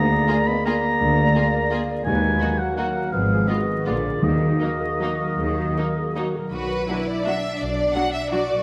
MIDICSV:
0, 0, Header, 1, 13, 480
1, 0, Start_track
1, 0, Key_signature, -6, "minor"
1, 0, Tempo, 355240
1, 1361, Time_signature, 3, 2, 24, 8
1, 4706, Tempo, 382653
1, 8546, Tempo, 353774
1, 11373, End_track
2, 0, Start_track
2, 0, Title_t, "Oboe"
2, 0, Program_c, 0, 68
2, 0, Note_on_c, 0, 82, 78
2, 640, Note_on_c, 0, 83, 75
2, 660, Note_off_c, 0, 82, 0
2, 875, Note_off_c, 0, 83, 0
2, 883, Note_on_c, 0, 82, 85
2, 2392, Note_off_c, 0, 82, 0
2, 2761, Note_on_c, 0, 80, 78
2, 3487, Note_on_c, 0, 78, 62
2, 3508, Note_off_c, 0, 80, 0
2, 3733, Note_off_c, 0, 78, 0
2, 3741, Note_on_c, 0, 78, 66
2, 4202, Note_off_c, 0, 78, 0
2, 4210, Note_on_c, 0, 77, 61
2, 4698, Note_on_c, 0, 75, 57
2, 4717, Note_off_c, 0, 77, 0
2, 5179, Note_off_c, 0, 75, 0
2, 5186, Note_on_c, 0, 74, 55
2, 5645, Note_on_c, 0, 75, 58
2, 5664, Note_off_c, 0, 74, 0
2, 8320, Note_off_c, 0, 75, 0
2, 11373, End_track
3, 0, Start_track
3, 0, Title_t, "Flute section"
3, 0, Program_c, 1, 73
3, 0, Note_on_c, 1, 74, 67
3, 640, Note_off_c, 1, 74, 0
3, 646, Note_on_c, 1, 75, 59
3, 893, Note_off_c, 1, 75, 0
3, 897, Note_on_c, 1, 74, 63
3, 2747, Note_off_c, 1, 74, 0
3, 2773, Note_on_c, 1, 71, 60
3, 3486, Note_off_c, 1, 71, 0
3, 3517, Note_on_c, 1, 70, 44
3, 3733, Note_off_c, 1, 70, 0
3, 3749, Note_on_c, 1, 70, 51
3, 4211, Note_off_c, 1, 70, 0
3, 4228, Note_on_c, 1, 68, 53
3, 4708, Note_off_c, 1, 68, 0
3, 4711, Note_on_c, 1, 66, 47
3, 5185, Note_off_c, 1, 66, 0
3, 5192, Note_on_c, 1, 65, 45
3, 5639, Note_on_c, 1, 66, 44
3, 5648, Note_off_c, 1, 65, 0
3, 8318, Note_off_c, 1, 66, 0
3, 11373, End_track
4, 0, Start_track
4, 0, Title_t, "Clarinet"
4, 0, Program_c, 2, 71
4, 0, Note_on_c, 2, 68, 53
4, 2729, Note_off_c, 2, 68, 0
4, 2786, Note_on_c, 2, 66, 45
4, 3986, Note_off_c, 2, 66, 0
4, 4216, Note_on_c, 2, 68, 46
4, 6031, Note_off_c, 2, 68, 0
4, 6116, Note_on_c, 2, 70, 53
4, 6377, Note_on_c, 2, 68, 45
4, 6396, Note_off_c, 2, 70, 0
4, 6615, Note_on_c, 2, 66, 49
4, 6634, Note_off_c, 2, 68, 0
4, 6859, Note_off_c, 2, 66, 0
4, 6866, Note_on_c, 2, 70, 46
4, 7110, Note_on_c, 2, 68, 47
4, 7129, Note_off_c, 2, 70, 0
4, 7327, Note_off_c, 2, 68, 0
4, 7335, Note_on_c, 2, 66, 40
4, 7588, Note_on_c, 2, 70, 45
4, 7607, Note_off_c, 2, 66, 0
4, 7840, Note_on_c, 2, 68, 45
4, 7858, Note_off_c, 2, 70, 0
4, 8078, Note_off_c, 2, 68, 0
4, 8086, Note_on_c, 2, 66, 48
4, 8316, Note_on_c, 2, 70, 44
4, 8335, Note_off_c, 2, 66, 0
4, 8543, Note_off_c, 2, 70, 0
4, 11373, End_track
5, 0, Start_track
5, 0, Title_t, "Violin section"
5, 0, Program_c, 3, 48
5, 386, Note_on_c, 3, 68, 46
5, 494, Note_off_c, 3, 68, 0
5, 902, Note_on_c, 3, 68, 48
5, 1010, Note_off_c, 3, 68, 0
5, 1844, Note_on_c, 3, 68, 40
5, 1952, Note_off_c, 3, 68, 0
5, 2328, Note_on_c, 3, 68, 43
5, 2436, Note_off_c, 3, 68, 0
5, 3259, Note_on_c, 3, 66, 42
5, 3367, Note_off_c, 3, 66, 0
5, 3766, Note_on_c, 3, 66, 45
5, 3874, Note_off_c, 3, 66, 0
5, 4717, Note_on_c, 3, 65, 35
5, 4818, Note_off_c, 3, 65, 0
5, 5186, Note_on_c, 3, 65, 39
5, 5286, Note_off_c, 3, 65, 0
5, 6123, Note_on_c, 3, 63, 34
5, 6224, Note_off_c, 3, 63, 0
5, 6634, Note_on_c, 3, 63, 37
5, 6735, Note_off_c, 3, 63, 0
5, 7595, Note_on_c, 3, 63, 33
5, 7695, Note_off_c, 3, 63, 0
5, 8076, Note_on_c, 3, 63, 38
5, 8177, Note_off_c, 3, 63, 0
5, 9022, Note_on_c, 3, 66, 32
5, 9131, Note_off_c, 3, 66, 0
5, 9527, Note_on_c, 3, 66, 39
5, 9636, Note_off_c, 3, 66, 0
5, 10478, Note_on_c, 3, 66, 36
5, 10586, Note_off_c, 3, 66, 0
5, 10955, Note_on_c, 3, 66, 39
5, 11064, Note_off_c, 3, 66, 0
5, 11373, End_track
6, 0, Start_track
6, 0, Title_t, "Violin section"
6, 0, Program_c, 4, 48
6, 378, Note_on_c, 4, 65, 49
6, 486, Note_off_c, 4, 65, 0
6, 899, Note_on_c, 4, 65, 44
6, 1008, Note_off_c, 4, 65, 0
6, 1829, Note_on_c, 4, 65, 45
6, 1937, Note_off_c, 4, 65, 0
6, 2298, Note_on_c, 4, 65, 45
6, 2406, Note_off_c, 4, 65, 0
6, 3253, Note_on_c, 4, 63, 37
6, 3361, Note_off_c, 4, 63, 0
6, 3743, Note_on_c, 4, 63, 37
6, 3851, Note_off_c, 4, 63, 0
6, 4695, Note_on_c, 4, 59, 38
6, 4796, Note_off_c, 4, 59, 0
6, 5180, Note_on_c, 4, 59, 35
6, 5280, Note_off_c, 4, 59, 0
6, 6142, Note_on_c, 4, 58, 32
6, 6242, Note_off_c, 4, 58, 0
6, 6640, Note_on_c, 4, 58, 38
6, 6740, Note_off_c, 4, 58, 0
6, 7586, Note_on_c, 4, 58, 33
6, 7687, Note_off_c, 4, 58, 0
6, 8062, Note_on_c, 4, 58, 34
6, 8162, Note_off_c, 4, 58, 0
6, 8533, Note_on_c, 4, 71, 51
6, 9215, Note_off_c, 4, 71, 0
6, 9254, Note_on_c, 4, 74, 52
6, 9506, Note_off_c, 4, 74, 0
6, 9507, Note_on_c, 4, 76, 58
6, 9977, Note_on_c, 4, 74, 62
6, 9982, Note_off_c, 4, 76, 0
6, 10438, Note_on_c, 4, 78, 58
6, 10458, Note_off_c, 4, 74, 0
6, 10696, Note_off_c, 4, 78, 0
6, 10696, Note_on_c, 4, 76, 55
6, 10935, Note_on_c, 4, 74, 58
6, 10942, Note_off_c, 4, 76, 0
6, 11373, Note_off_c, 4, 74, 0
6, 11373, End_track
7, 0, Start_track
7, 0, Title_t, "Harp"
7, 0, Program_c, 5, 46
7, 0, Note_on_c, 5, 50, 54
7, 0, Note_on_c, 5, 58, 43
7, 0, Note_on_c, 5, 70, 45
7, 144, Note_on_c, 5, 65, 42
7, 387, Note_on_c, 5, 56, 45
7, 627, Note_off_c, 5, 65, 0
7, 643, Note_on_c, 5, 65, 41
7, 890, Note_on_c, 5, 62, 37
7, 1114, Note_off_c, 5, 65, 0
7, 1130, Note_on_c, 5, 65, 43
7, 1348, Note_off_c, 5, 50, 0
7, 1364, Note_on_c, 5, 50, 55
7, 1573, Note_off_c, 5, 56, 0
7, 1589, Note_on_c, 5, 56, 35
7, 1817, Note_off_c, 5, 62, 0
7, 1833, Note_on_c, 5, 62, 41
7, 2072, Note_off_c, 5, 65, 0
7, 2088, Note_on_c, 5, 65, 45
7, 2311, Note_off_c, 5, 62, 0
7, 2327, Note_on_c, 5, 62, 35
7, 2548, Note_off_c, 5, 65, 0
7, 2564, Note_on_c, 5, 65, 42
7, 2780, Note_on_c, 5, 51, 51
7, 2798, Note_off_c, 5, 56, 0
7, 2800, Note_off_c, 5, 50, 0
7, 2801, Note_off_c, 5, 62, 0
7, 2803, Note_off_c, 5, 65, 0
7, 3010, Note_on_c, 5, 66, 38
7, 3251, Note_on_c, 5, 54, 37
7, 3481, Note_off_c, 5, 66, 0
7, 3498, Note_on_c, 5, 66, 39
7, 3738, Note_on_c, 5, 63, 36
7, 3972, Note_off_c, 5, 66, 0
7, 3988, Note_on_c, 5, 66, 37
7, 4215, Note_on_c, 5, 44, 45
7, 4234, Note_off_c, 5, 63, 0
7, 4237, Note_off_c, 5, 54, 0
7, 4238, Note_off_c, 5, 66, 0
7, 4239, Note_off_c, 5, 51, 0
7, 4239, Note_off_c, 5, 70, 0
7, 4241, Note_off_c, 5, 58, 0
7, 4445, Note_on_c, 5, 65, 34
7, 4698, Note_on_c, 5, 56, 34
7, 4933, Note_off_c, 5, 65, 0
7, 4948, Note_on_c, 5, 65, 35
7, 5185, Note_on_c, 5, 46, 43
7, 5198, Note_off_c, 5, 44, 0
7, 5407, Note_off_c, 5, 65, 0
7, 5422, Note_on_c, 5, 65, 31
7, 5429, Note_on_c, 5, 71, 35
7, 5656, Note_on_c, 5, 51, 42
7, 5657, Note_off_c, 5, 56, 0
7, 5662, Note_off_c, 5, 46, 0
7, 5663, Note_off_c, 5, 65, 0
7, 5667, Note_off_c, 5, 71, 0
7, 5884, Note_on_c, 5, 70, 32
7, 6131, Note_on_c, 5, 63, 30
7, 6364, Note_off_c, 5, 70, 0
7, 6379, Note_on_c, 5, 70, 30
7, 6627, Note_on_c, 5, 54, 29
7, 6861, Note_off_c, 5, 70, 0
7, 6876, Note_on_c, 5, 70, 33
7, 7096, Note_off_c, 5, 51, 0
7, 7111, Note_on_c, 5, 51, 42
7, 7319, Note_off_c, 5, 63, 0
7, 7334, Note_on_c, 5, 63, 28
7, 7566, Note_off_c, 5, 54, 0
7, 7581, Note_on_c, 5, 54, 28
7, 7812, Note_off_c, 5, 70, 0
7, 7827, Note_on_c, 5, 70, 29
7, 8052, Note_off_c, 5, 54, 0
7, 8067, Note_on_c, 5, 54, 28
7, 8298, Note_off_c, 5, 70, 0
7, 8313, Note_on_c, 5, 70, 31
7, 8322, Note_on_c, 5, 47, 40
7, 8360, Note_off_c, 5, 54, 0
7, 8375, Note_on_c, 5, 54, 34
7, 8432, Note_on_c, 5, 62, 33
7, 8491, Note_on_c, 5, 74, 33
7, 8559, Note_off_c, 5, 70, 0
7, 8561, Note_off_c, 5, 63, 0
7, 8566, Note_off_c, 5, 51, 0
7, 11185, Note_on_c, 5, 46, 40
7, 11230, Note_off_c, 5, 54, 0
7, 11246, Note_on_c, 5, 54, 31
7, 11310, Note_on_c, 5, 64, 32
7, 11318, Note_off_c, 5, 47, 0
7, 11373, Note_off_c, 5, 46, 0
7, 11373, Note_off_c, 5, 54, 0
7, 11373, Note_off_c, 5, 62, 0
7, 11373, Note_off_c, 5, 64, 0
7, 11373, Note_off_c, 5, 74, 0
7, 11373, End_track
8, 0, Start_track
8, 0, Title_t, "Bassoon"
8, 0, Program_c, 6, 70
8, 0, Note_on_c, 6, 58, 51
8, 2728, Note_off_c, 6, 58, 0
8, 2769, Note_on_c, 6, 58, 49
8, 4224, Note_on_c, 6, 59, 42
8, 4244, Note_off_c, 6, 58, 0
8, 5430, Note_off_c, 6, 59, 0
8, 5643, Note_on_c, 6, 58, 39
8, 8269, Note_off_c, 6, 58, 0
8, 11373, End_track
9, 0, Start_track
9, 0, Title_t, "Viola section"
9, 0, Program_c, 7, 48
9, 373, Note_on_c, 7, 58, 43
9, 481, Note_off_c, 7, 58, 0
9, 884, Note_on_c, 7, 58, 46
9, 992, Note_off_c, 7, 58, 0
9, 1823, Note_on_c, 7, 58, 42
9, 1931, Note_off_c, 7, 58, 0
9, 2308, Note_on_c, 7, 58, 45
9, 2416, Note_off_c, 7, 58, 0
9, 3262, Note_on_c, 7, 58, 39
9, 3370, Note_off_c, 7, 58, 0
9, 3751, Note_on_c, 7, 58, 42
9, 3859, Note_off_c, 7, 58, 0
9, 4695, Note_on_c, 7, 56, 35
9, 4796, Note_off_c, 7, 56, 0
9, 5189, Note_on_c, 7, 56, 34
9, 5290, Note_off_c, 7, 56, 0
9, 6113, Note_on_c, 7, 54, 34
9, 6213, Note_off_c, 7, 54, 0
9, 6612, Note_on_c, 7, 54, 35
9, 6712, Note_off_c, 7, 54, 0
9, 7581, Note_on_c, 7, 54, 28
9, 7681, Note_off_c, 7, 54, 0
9, 8082, Note_on_c, 7, 54, 33
9, 8182, Note_off_c, 7, 54, 0
9, 9021, Note_on_c, 7, 54, 36
9, 9021, Note_on_c, 7, 62, 35
9, 9129, Note_off_c, 7, 54, 0
9, 9129, Note_off_c, 7, 62, 0
9, 9516, Note_on_c, 7, 54, 36
9, 9518, Note_on_c, 7, 62, 34
9, 9625, Note_off_c, 7, 54, 0
9, 9626, Note_off_c, 7, 62, 0
9, 10455, Note_on_c, 7, 54, 37
9, 10459, Note_on_c, 7, 62, 38
9, 10564, Note_off_c, 7, 54, 0
9, 10567, Note_off_c, 7, 62, 0
9, 10960, Note_on_c, 7, 62, 38
9, 10966, Note_on_c, 7, 54, 39
9, 11069, Note_off_c, 7, 62, 0
9, 11074, Note_off_c, 7, 54, 0
9, 11373, End_track
10, 0, Start_track
10, 0, Title_t, "French horn section"
10, 0, Program_c, 8, 60
10, 0, Note_on_c, 8, 58, 70
10, 433, Note_off_c, 8, 58, 0
10, 645, Note_on_c, 8, 59, 63
10, 756, Note_off_c, 8, 59, 0
10, 898, Note_on_c, 8, 58, 67
10, 2747, Note_off_c, 8, 58, 0
10, 2764, Note_on_c, 8, 56, 68
10, 3481, Note_off_c, 8, 56, 0
10, 3505, Note_on_c, 8, 54, 52
10, 3750, Note_off_c, 8, 54, 0
10, 3765, Note_on_c, 8, 54, 51
10, 4220, Note_off_c, 8, 54, 0
10, 4222, Note_on_c, 8, 53, 53
10, 4705, Note_off_c, 8, 53, 0
10, 4712, Note_on_c, 8, 51, 45
10, 5174, Note_on_c, 8, 50, 46
10, 5176, Note_off_c, 8, 51, 0
10, 5637, Note_on_c, 8, 51, 49
10, 5638, Note_off_c, 8, 50, 0
10, 8266, Note_off_c, 8, 51, 0
10, 11373, End_track
11, 0, Start_track
11, 0, Title_t, "Cello section"
11, 0, Program_c, 10, 48
11, 0, Note_on_c, 10, 38, 59
11, 307, Note_off_c, 10, 38, 0
11, 1367, Note_on_c, 10, 38, 59
11, 1755, Note_off_c, 10, 38, 0
11, 2784, Note_on_c, 10, 39, 56
11, 3175, Note_off_c, 10, 39, 0
11, 4235, Note_on_c, 10, 44, 48
11, 4627, Note_off_c, 10, 44, 0
11, 5193, Note_on_c, 10, 46, 44
11, 5572, Note_off_c, 10, 46, 0
11, 5647, Note_on_c, 10, 51, 45
11, 6039, Note_off_c, 10, 51, 0
11, 7118, Note_on_c, 10, 51, 47
11, 7506, Note_off_c, 10, 51, 0
11, 8547, Note_on_c, 10, 66, 44
11, 8993, Note_off_c, 10, 66, 0
11, 9032, Note_on_c, 10, 64, 43
11, 9509, Note_off_c, 10, 64, 0
11, 9529, Note_on_c, 10, 62, 43
11, 10960, Note_off_c, 10, 62, 0
11, 10969, Note_on_c, 10, 66, 48
11, 11373, Note_off_c, 10, 66, 0
11, 11373, End_track
12, 0, Start_track
12, 0, Title_t, "Timpani"
12, 0, Program_c, 11, 47
12, 2789, Note_on_c, 11, 51, 58
12, 3458, Note_off_c, 11, 51, 0
12, 5636, Note_on_c, 11, 51, 53
12, 6323, Note_off_c, 11, 51, 0
12, 11373, End_track
13, 0, Start_track
13, 0, Title_t, "Double bass section"
13, 0, Program_c, 12, 48
13, 0, Note_on_c, 12, 38, 68
13, 310, Note_off_c, 12, 38, 0
13, 1372, Note_on_c, 12, 38, 57
13, 1757, Note_off_c, 12, 38, 0
13, 2770, Note_on_c, 12, 39, 56
13, 3167, Note_off_c, 12, 39, 0
13, 4220, Note_on_c, 12, 32, 53
13, 4619, Note_off_c, 12, 32, 0
13, 5195, Note_on_c, 12, 34, 45
13, 5574, Note_off_c, 12, 34, 0
13, 5644, Note_on_c, 12, 39, 46
13, 6038, Note_off_c, 12, 39, 0
13, 7102, Note_on_c, 12, 39, 50
13, 7498, Note_off_c, 12, 39, 0
13, 8530, Note_on_c, 12, 35, 49
13, 8934, Note_off_c, 12, 35, 0
13, 9984, Note_on_c, 12, 35, 48
13, 10380, Note_off_c, 12, 35, 0
13, 11373, End_track
0, 0, End_of_file